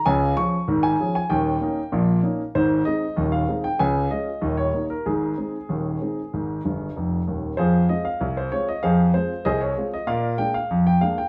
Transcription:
<<
  \new Staff \with { instrumentName = "Grand piano" } { \time 2/4 \key aes \major \tempo 4 = 96 aes''8 des'''8. aes''8 aes''16 | g''4. r8 | c''8 ees''8. f''8 g''16 | aes''8 ees''8. des''8 bes'16 |
aes'2~ | aes'4. r8 | <f' aes' c''>8 ees''16 f''8 c''16 des''16 ees''16 | <aes' c'' f''>8 c''8 <aes' c'' ees''>16 des''8 ees''16 |
<bes' d'' f''>8 g''16 f''8 g''16 f''16 g''16 | }
  \new Staff \with { instrumentName = "Grand piano" } { \clef bass \time 2/4 \key aes \major <des, des>8 <f des' aes'>8 <aes,, aes,>8 <f des' aes'>8 | <ees,, ees,>8 <bes des' ees'>8 <bes,, bes,>8 <bes des' ees'>8 | <aes,, aes,>8 <aes c' ees'>8 <ees,, ees,>8 <aes c' ees'>8 | <des, des>8 <aes des' f'>8 <ees,, ees,>8 <g bes ees'>8 |
<aes,, aes,>8 <aes c' ees'>8 <ees,, ees,>8 <aes c' ees'>8 | <aes,, aes,>8 <g,, g,>8 <f,, f,>8 <ees,, ees,>8 | f,8 <aes c' f'>8 c,8 <aes c' f'>8 | f,8 <aes c' f'>8 c,8 <aes c' f'>8 |
bes,8 <aes bes d'>8 f,8 <aes bes d'>8 | }
>>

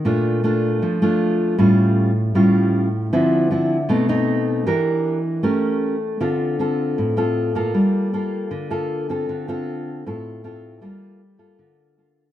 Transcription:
\new Staff \with { instrumentName = "Nylon-string guitar" } { \time 4/4 \key d \minor \tempo 4 = 156 << { <a d' f'>4 <a d' f'>4. <a d' f'>4. | <g cis' eis'>4. r8 <g cis' eis'>4. r8 | <f c' e'>4 <f c' e'>8 r8 <a c' dis'>8 <a c' dis'>4. | <d' g' bes'>4. r8 <cis' g' bes'>4. r8 |
<c' f' a'>4 <c' f' a'>4. <c' f' a'>4 <bes f' a'>8~ | <bes f' a'>4 <bes f' a'>4. <bes f' a'>4 <c' f' a'>8~ | <c' f' a'>8 <c' f' a'>4. <c' f' a'>4 <c' f' a'>4 | <bes f' a'>4 r8 <bes f' a'>4. <bes f' a'>8 r8 | } \\ { bes,2 f2 | a,2 a,2 | d2 b,2 | e2 a2 |
d2 a,2 | g2 d2 | d2 a,2 | g2 d2 | } >> }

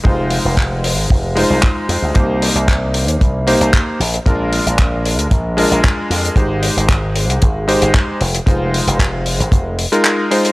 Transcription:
<<
  \new Staff \with { instrumentName = "Electric grand piano" } { \time 4/4 \key f \dorian \tempo 4 = 114 <aes ees' f' c''>2~ <aes ees' f' c''>8 <aes ees' f' c''>4. | <bes ees' g' c''>2~ <bes ees' g' c''>8 <bes ees' g' c''>4 r8 | <aes d' f' bes'>2~ <aes d' f' bes'>8 <aes d' f' bes'>4. | <aes ees' g' c''>2~ <aes ees' g' c''>8 <aes ees' g' c''>4 r8 |
<aes ees' f' c''>2~ <aes ees' f' c''>8 r16 <aes ees' f' bes'>8. <aes ees' f' c''>8 | }
  \new Staff \with { instrumentName = "Slap bass" } { \clef bass \time 4/4 \key f \dorian f,,8 r16 f,,4 aes,,16 f,,8 r16 c,16 r8 f,16 d,16 | c,8 r16 c,4 ees,16 c,8 r16 c,16 r8 bes,,16 r16 | bes,,8 r16 bes,,4 d,16 bes,,8 r16 bes,,16 r8 f,16 r16 | aes,,8 r16 aes,,4 c,16 aes,,8 r16 aes,,16 r8 f,,16 r16 |
f,,8 r16 f,,4 aes,,16 f,,8 r4. | }
  \new DrumStaff \with { instrumentName = "Drums" } \drummode { \time 4/4 bd8 hho8 <hc bd>8 hho8 bd8 hho8 <hc bd>8 hho8 | <hh bd>8 hho16 hh16 <hc hh bd>8 hho16 hh16 <hh bd>8 hho16 hh16 <hc hh bd>8 hho16 hh16 | <hh bd>8 hho16 hh16 <hc hh bd>8 hho16 hh16 <hh bd>8 hho16 hh16 <hc hh bd>8 hho16 hh16 | <hh bd>8 hho16 hh16 <hc hh bd>8 hho16 hh16 <hh bd>8 hho16 hh16 <hc hh bd>8 hho16 hh16 |
<hh bd>8 hho16 hh16 <hc hh bd>8 hho16 hh16 <hh bd>8 hho16 hh16 <hc hh>8 hho16 hh16 | }
>>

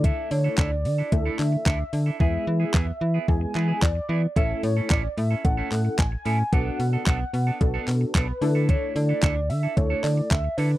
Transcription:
<<
  \new Staff \with { instrumentName = "Soft synth lead" } { \time 4/4 \key d \lydian \tempo 4 = 111 e''8 cis''8 d''4 e''8 e''4. | e''2 gis''4 d''4 | e''8 cis''8 d''8 e''8 fis''4 gis''4 | fis''4 fis''4. r8 b'4 |
cis''8 d''4 e''8 cis''8 d''8 e''8 b'8 | }
  \new Staff \with { instrumentName = "Clean electric guitar" } { \time 4/4 \key d \lydian <d' e' a'>8 r16 <d' e' a'>16 <d' e' a'>16 r8 <d' e' a'>16 r16 <d' e' a'>16 r8 <d' e' a'>16 r8 <d' e' a'>16 | <b e' gis'>8 r16 <b e' gis'>16 <b e' gis'>16 r8 <b e' gis'>16 r8 <b e' gis'>16 <b e' gis'>16 r8 <b e' gis'>16 r16 | <cis' e' a'>8 r16 <cis' e' a'>16 <cis' e' a'>16 r8 <cis' e' a'>16 r16 <cis' e' a'>16 r4 <cis' e' a'>16 r16 | <b d' a'>8 r16 <b d' a'>16 <b d' a'>16 r8 <b d' a'>16 r16 <b d' a'>16 r8 <b d' a'>16 r8 <d' e' a'>16 |
<d' e' a'>8 r16 <d' e' a'>16 <d' e' a'>16 r8 <d' e' a'>16 r16 <d' e' a'>16 r4 <d' e' a'>16 r16 | }
  \new Staff \with { instrumentName = "Analog polysynth" } { \time 4/4 \key d \lydian <a d' e' a'>4 r4 <a d' e' a'>4 r4 | <gis b e' gis'>4 r4 <gis b e' gis'>4 r4 | <a cis' e' a'>4 r4 <a cis' e' a'>4 r4 | <b d' fis' a'>4 r4 <b d' fis' a'>4 r8 <a d' e' a'>8~ |
<a d' e' a'>4 r4 <a d' e' a'>4 r4 | }
  \new Staff \with { instrumentName = "FM bass" } { \clef bass \time 4/4 \key d \lydian d8 d8 d,8 d8 d,8 d8 d,8 d8 | e,8 e8 e,8 e8 e,8 e8 e,8 e8 | a,,8 a,8 a,,8 a,8 a,,8 a,8 a,,8 a,8 | b,,8 b,8 b,,8 b,8 b,,8 b,8 b,,8 d8~ |
d8 d8 d,8 d8 d,8 d8 d,8 d8 | }
  \new DrumStaff \with { instrumentName = "Drums" } \drummode { \time 4/4 <hh bd>8 hho8 <hc hh bd>8 hho8 <hh bd>8 <hc hho>8 <hc hh bd>8 hho8 | bd4 <hc bd>4 bd8 hc8 <hc bd>4 | <hh bd>8 hho8 <hc hh bd>8 hho8 <hh bd>8 <hc hho>8 <hc hh bd>8 hho8 | <hh bd>8 hho8 <hc hh bd>8 hho8 <hh bd>8 <hc hho>8 <hc hh bd>8 hho8 |
<hh bd>8 hho8 <hc hh bd>8 hho8 <hh bd>8 <hc hho>8 <hc hh bd>8 hho8 | }
>>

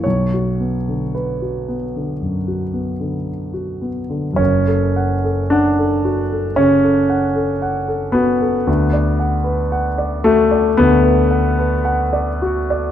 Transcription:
\new Staff \with { instrumentName = "Grand piano" } { \time 4/4 \key b \minor \tempo 4 = 56 << { b,,16 fis'16 b16 d8 fis'16 b16 d16 fis,16 fis'16 b16 d8 fis'16 b16 d16 | \key fis \minor <fis,, fis,>16 a'16 fis''16 a'16 fis''16 a'16 fis'16 a'16 cis16 a'16 fis''16 a'16 fis''16 a'16 fis'16 a'16 | d,16 d''16 fis''16 b'16 fis''16 d''16 fis'16 d''16 d,16 b'16 fis''16 b'16 fis''16 d''16 fis'16 d''16 | } \\ { cis''4 b'2 r4 | cis'4 d'4 cis'4. b8~ | b4. a8 b2 | } >> }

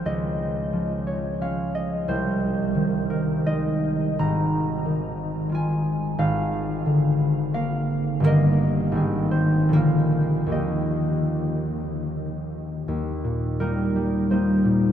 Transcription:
<<
  \new Staff \with { instrumentName = "Harp" } { \time 3/4 \key aes \major \tempo 4 = 87 ees''4. des''8 f''8 ees''8 | c''4. bes'8 ees''4 | \key ees \major bes''2 aes''4 | f''2 f''4 |
ees''4. c''8 f''4 | ees''2.~ | ees''4 <ees' bes'>4 <ees' c''>4 | }
  \new Staff \with { instrumentName = "Harp" } { \clef bass \time 3/4 \key aes \major <des, f aes>4 f4 <aes des'>4 | c,4 ees4 <aes ees'>4 | \key ees \major aes,,4 ees4 <aes f'>4 | aes,,4 d4 <bes bes'>4 |
<g,, ees bes bes'>4 <aes,, ees c' aes'>4 <bes,, d bes f'>4 | <ees, ees bes g'>2. | ees,8 bes,8 <g bes>8 g8 <g bes>8 bes,8 | }
>>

